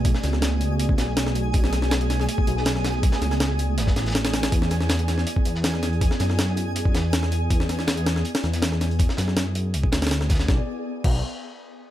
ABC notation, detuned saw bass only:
X:1
M:4/4
L:1/8
Q:1/4=161
K:Emix
V:1 name="Detuned saw bass" clef=bass
B,,, C,,4 B,,,3 | B,,,4 z B,,,3 | z C,,3 F,,, A,,,3 | E,,4 z E,,3 |
z F,,4 E,,3 | E,,4 z E,,3 | z F,,3 B,,, D,,3 | B,,, z2 B,,, z4 |]